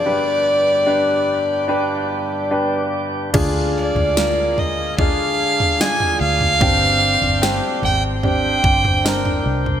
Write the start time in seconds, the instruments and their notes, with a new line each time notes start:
Already playing: violin D5, tonewheel organ D5
0.04 grand piano G1 G2 D4 G4 B4, tonewheel organ G2 D3 B3 G4
0.86 grand piano D4 G4 B4
1.68 grand piano D4 G4 B4
2.51 grand piano D4 G4 B4
3.33 fingered electric bass D2, tonewheel organ D3 G#3 F4, grand piano D3 D4 F4 G#4, kick, floor tom, crash
3.78 violin D5
3.95 fingered electric bass D2, floor tom
4.17 grand piano F4 A#4, snare
4.58 violin D#5, floor tom
4.99 grand piano D4 F4 G#4, violin F5, kick, floor tom
5.60 floor tom
5.80 grand piano D4 F4 G#4, violin G#5, snare
6.00 floor tom
6.21 fingered electric bass D2, violin F5
6.41 floor tom
6.61 fingered electric bass G1, grand piano G2 C4 D4 G4, tonewheel organ C4 D4 G5, kick, floor tom
7.21 fingered electric bass G1, floor tom
7.42 grand piano C4 D4 G4, snare
7.82 fingered electric bass G#1, violin G5, floor tom
8.23 grand piano C4 D4 G4, violin G5, floor tom
8.64 fingered electric bass G1, kick
8.85 floor tom
9.05 grand piano C4 D4 A#4, snare
9.25 floor tom
9.46 fingered electric bass C2
9.66 floor tom